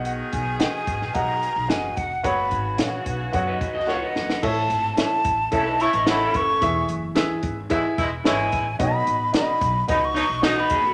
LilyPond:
<<
  \new Staff \with { instrumentName = "Flute" } { \time 4/4 \key fis \mixolydian \tempo 4 = 110 fis''8 gis''8 gis''4 ais''4 gis''8 fis''8 | b''4 r2 fis''4 | \key a \lydian a''4 a''4 a''8 cis'''8 b''8 cis'''8~ | cis'''8 r2 r8 gis''4 |
b''4 b''4 b''16 cis'''8. dis'''16 b''8. | }
  \new Staff \with { instrumentName = "Upright piano" } { \time 4/4 \key fis \mixolydian <fis' b' dis'' fis''>8 r8 <fis' b' dis'' fis''>8 r8 <fis' b' dis'' fis''>8 r8 <fis' b' dis'' fis''>8 r8 | <fis' b' cis'' fis''>8 r8 <fis' b' cis'' eis'' fis''>8 r8 <fis' b' cis'' fis''>8 r8 <fis' ais' b' cis'' fis''>8 r8 | \key a \lydian <e' a' cis'' e''>8 r8 <e' a' cis'' e''>8 r8 <e' a' cis'' e''>8 r8 <e' a' cis'' fis''>8 r8 | <e' gis' b' e''>8 r8 <e' gis' b' e''>8 r8 <e' gis' b' e''>8 r8 <e' gis' b' cis''>8 r8 |
<dis' fis' b' cis'' dis''>8 r8 <dis' fis' b' d'' dis''>8 r8 <dis' fis' b' dis''>8 r8 <dis' fis' b' dis''>8 r8 | }
  \new Staff \with { instrumentName = "Upright piano" } { \clef bass \time 4/4 \key fis \mixolydian b,4 r2. | r1 | \key a \lydian a,4. r2 r8 | e4. r2 r8 |
b,4. r2 r8 | }
  \new Staff \with { instrumentName = "Clean electric guitar" } { \time 4/4 \key fis \mixolydian r1 | r2 r16 <dis' b'>8 <fis' dis''>16 <eis' cis''>16 <dis' b'>8. | \key a \lydian r2 <cis' a'>16 <dis' b'>16 <e' cis''>16 <dis' b'>8 <cis' a'>8. | r1 |
r2. <fis' dis''>16 <dis' b'>16 <b gis'>16 <a fis'>16 | }
  \new Staff \with { instrumentName = "Saxophone section" } { \clef bass \time 4/4 \key fis \mixolydian <dis b gis'>2.~ <dis b gis'>8 r8 | <cis b fis'>2.~ <cis b fis'>8 r8 | \key a \lydian r2 <cis a e'>16 r16 <cis a e'>16 r16 <cis a e'>8. r16 | r2 <b, gis e'>16 r16 <b, gis e'>16 r16 <b, gis e'>8. r16 |
r2 <b, fis dis'>16 r16 <b, fis dis'>16 r16 <b, fis dis'>8. r16 | }
  \new Staff \with { instrumentName = "Upright bass" } { \clef bass \time 4/4 \key fis \mixolydian b,,8 b,,8. r16 gis,,16 ais,,16 b,,8. b,,16 fis,,8 eis,,8 | fis,,8 gis,,8 ais,,8 b,,8 fis,8 cis,4 fis,,8 | \key a \lydian a,,8 gis,,8 r8 a,,8 b,,8. a,,8. fis,,8 | e,,8 fis,,8 r8 gis,,4 e,,8 gis,,8 a,,8 |
b,,8 a,,8 r8 b,,8 cis,8. b,,8. fis,,8 | }
  \new DrumStaff \with { instrumentName = "Drums" } \drummode { \time 4/4 hh8 <hh bd>8 <hh sn>8 <hh bd>16 sn16 <hh bd>8 hh8 <hh sn>8 <hh bd>8 | <hh bd>8 <hh bd>8 <hh sn>8 <hh bd>8 <hh bd>8 <hh bd>8 sn8 sn16 sn16 | <cymc bd>8 hh8 <hh sn>8 <hh bd>8 <hh bd>8 hh16 hh16 <hh sn>8 <hh bd>8 | <hh bd>8 hh8 <hh sn>8 <hh bd>8 <hh bd>8 <hh bd>8 <hh sn>8 <hh bd>8 |
<hh bd>8 hh8 <hh sn>8 <hh bd>8 <hh bd>8 hh8 <hh sn>8 <hh bd>8 | }
>>